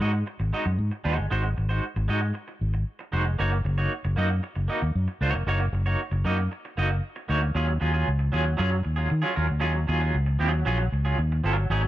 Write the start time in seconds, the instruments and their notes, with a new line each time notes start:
0.00 fingered electric bass G#2, clean electric guitar G#3 D#4 F#4 D#5
0.13 muted clean electric guitar stroke
0.26 muted clean electric guitar stroke
0.40 fingered electric bass G#1, muted clean electric guitar stroke
0.53 clean electric guitar G#3 D#4 F#4 D#5
0.66 fingered electric bass F#2, muted clean electric guitar stroke
0.79 fingered electric bass G#2
0.91 muted clean electric guitar stroke
1.04 fingered electric bass D#2, clean electric guitar G#3 D#4 F#4 C5
1.18 fingered electric bass G1, muted clean electric guitar stroke
1.31 fingered electric bass G#1, clean electric guitar G#3 D#4 F#4 C5
1.44 muted clean electric guitar stroke
1.57 fingered electric bass G#1, muted clean electric guitar stroke
1.69 clean electric guitar G#3 D#4 F#4 C5
1.96 fingered electric bass G#1, muted clean electric guitar stroke
2.08 fingered electric bass G#2, clean electric guitar G#3 D#4 F#4 D#5
2.21 muted clean electric guitar stroke
2.34 muted clean electric guitar stroke
2.48 muted clean electric guitar stroke
2.61 fingered electric bass G#1
2.74 muted clean electric guitar stroke
2.99 muted clean electric guitar stroke
3.12 fingered electric bass F1, clean electric guitar G#3 D#4 F#4 C5
3.25 muted clean electric guitar stroke
3.39 fingered electric bass F#1, clean electric guitar A#3 D#4 F#4 C#5
3.52 muted clean electric guitar stroke
3.65 fingered electric bass F#1, muted clean electric guitar stroke
3.78 clean electric guitar A#3 D#4 F#4 C#5
4.05 fingered electric bass F#1, muted clean electric guitar stroke
4.16 fingered electric bass F#2, clean electric guitar A#3 D#4 F#4 D#5
4.30 muted clean electric guitar stroke
4.43 muted clean electric guitar stroke
4.56 fingered electric bass F#1, muted clean electric guitar stroke
4.68 clean electric guitar A#3 D#4 F#4 D#5
4.82 fingered electric bass D#2, muted clean electric guitar stroke
4.95 fingered electric bass F#2
5.08 muted clean electric guitar stroke
5.21 fingered electric bass C#2, clean electric guitar A#3 D#4 F#4 C#5
5.34 fingered electric bass F1, muted clean electric guitar stroke
5.47 fingered electric bass F#1, clean electric guitar A#3 D#4 F#4 C#5
5.60 muted clean electric guitar stroke
5.73 fingered electric bass F#1, muted clean electric guitar stroke
5.86 clean electric guitar A#3 D#4 F#4 C#5
6.11 fingered electric bass F#1, muted clean electric guitar stroke
6.25 fingered electric bass F#2, clean electric guitar A#3 D#4 F#4 D#5
6.38 muted clean electric guitar stroke
6.51 muted clean electric guitar stroke
6.65 muted clean electric guitar stroke
6.77 fingered electric bass F#1, clean electric guitar A#3 D#4 F#4 D#5
6.91 muted clean electric guitar stroke
7.16 muted clean electric guitar stroke
7.28 fingered electric bass D2, clean electric guitar A#3 D#4 F#4 C#5
7.42 muted clean electric guitar stroke
7.55 fingered electric bass D#2, clean electric guitar F#3 C#4 F4 G#4
7.68 muted clean electric guitar stroke
7.80 fingered electric bass D#2, clean electric guitar F#3 C#4 F4 G#4
7.94 clean electric guitar F#3 C#4 F4 G#4
8.08 fingered electric bass C#2
8.19 muted clean electric guitar stroke
8.32 fingered electric bass D#2, clean electric guitar F#3 C#4 F4 G#4
8.46 muted clean electric guitar stroke
8.57 fingered electric bass F#2, clean electric guitar F#3 C#4 F4 G#4
8.71 muted clean electric guitar stroke
8.83 fingered electric bass D#2, muted clean electric guitar stroke
8.96 clean electric guitar F#3 C#4 F4 G#4
9.09 fingered electric bass D#3, muted clean electric guitar stroke
9.22 clean electric guitar F#3 C#4 F4 G#4
9.35 fingered electric bass D#2, clean electric guitar F#3 C#4 F4 A#4
9.47 fingered electric bass D2, muted clean electric guitar stroke
9.60 fingered electric bass D#2, clean electric guitar F#3 C#4 F4 G#4
9.73 muted clean electric guitar stroke
9.87 fingered electric bass D#2, clean electric guitar F#3 C#4 F4 G#4
10.00 clean electric guitar F#3 C#4 F4 G#4
10.15 fingered electric bass C#2
10.26 muted clean electric guitar stroke
10.39 fingered electric bass D#2, clean electric guitar F#3 C#4 F4 G#4
10.53 muted clean electric guitar stroke
10.65 fingered electric bass A#1, clean electric guitar F#3 C#4 F4 G#4
10.79 muted clean electric guitar stroke
10.92 fingered electric bass C#2, muted clean electric guitar stroke
11.05 clean electric guitar F#3 C#4 F4 G#4
11.18 fingered electric bass D#2, muted clean electric guitar stroke
11.32 muted clean electric guitar stroke
11.44 fingered electric bass G1, clean electric guitar F#3 C#4 F4 A#4
11.58 muted clean electric guitar stroke
11.70 fingered electric bass G#1, clean electric guitar F#3 C#4 D#4 G#4
11.82 muted clean electric guitar stroke